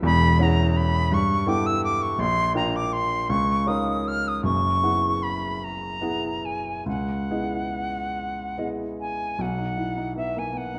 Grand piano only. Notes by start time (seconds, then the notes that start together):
0.02 E1 E2
0.39 C#4 E4 G#4 F#5
1.12 G2
1.47 B3 E4 A4 G5
2.19 A#1
2.54 D4 F4 A#4 G5
3.29 C#2
3.67 C#4 D#4 A#4 F5
4.43 F#1 F#2
4.83 B3 E4 G#4 F#5
6.01 B3 E4 G#4 F#5
6.86 C#2
7.31 B3 E4 G#4 D#5
8.58 B3 E4 G#4 D#5
9.39 B1
9.58 D#4
9.77 E4
9.97 D#4
10.16 B3
10.36 A#3
10.53 B3
10.74 D#4